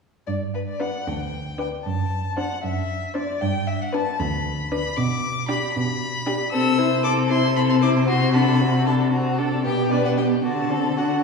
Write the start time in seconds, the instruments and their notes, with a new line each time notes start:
0.27 cello G2, violin D5
0.54 violin B4
0.68 violin D5
0.80 viola D4, violin B4 F#5
1.07 cello D2, violin G5
1.58 viola D4, violin B4 G5
1.85 cello F#2, violin A5
2.37 viola D4, violin C5 F#5
2.63 cello F#2, violin E5
3.14 viola D4, violin C5 D5
3.41 cello G2, violin G5
3.67 violin E5
3.81 violin F#5
3.93 viola D4, violin B4 A5
4.19 cello D2, violin B5
4.71 viola D4, violin B4 B5
4.97 cello B2, violin D6
5.49 viola D4, violin G4 B5
5.74 cello B2, violin B5
6.27 viola D4, violin G4
6.52 cello C3, viola C4, violin A4 E6
6.79 viola E4, violin C5
7.04 viola C4, violin A4 D6
7.30 viola E4, violin C5 C6
7.56 viola C4, violin A4 B5
7.70 violin C6
7.81 viola E4, violin C5 D6
8.08 viola C4, violin F#4 C6
8.34 viola D4, violin A4 B5
8.60 viola C4, violin F#4
8.86 viola D4, violin A4 A5
9.12 viola C4, violin F#4
9.39 viola D4, violin A4
9.65 cello B2, viola B3, violin G4 G5
9.91 viola D4, violin B4 D5
10.05 violin F#5
10.17 viola B3, violin G4 G5
10.44 cello D3, viola D4, violin F#4 A5
10.70 viola C4, violin A4
10.97 viola D4, violin F#4 F#5